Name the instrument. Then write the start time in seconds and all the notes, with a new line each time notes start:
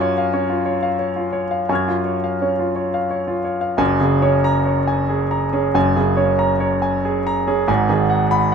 grand piano
Already playing: F#2 F4 G#5
0.01 C#5
0.18 F5
0.33 C#4 C#5
0.50 F4
0.66 C#5
0.83 F5
0.99 C#5
1.16 F4
1.33 C#5
1.51 F5
1.69 F#2 G#5 C#6 F6
1.75 G#6
1.88 F4
2.05 C#5
2.24 F5
2.42 C#4 C#5
2.59 F4
2.76 C#5
2.94 F5
3.11 C#5
3.28 F4
3.44 C#5
3.61 F5
3.77 F#1 F#2 G#5
4.00 C#3 G#4
4.22 C#4 C#5
4.44 A#5
4.66 C#5
4.87 G#5
5.09 G#4
5.31 A#5
5.53 C#4 G#4
5.74 F#1 F#2 G#5
5.96 C#3 G#4
6.17 C#4 C#5
6.39 A#5
6.60 C#5
6.82 G#5
7.05 G#4
7.27 A#5
7.48 C#4 G#4
7.67 G#1 G#2 G#5
7.89 D#3 G#4
8.10 F#5
8.31 B5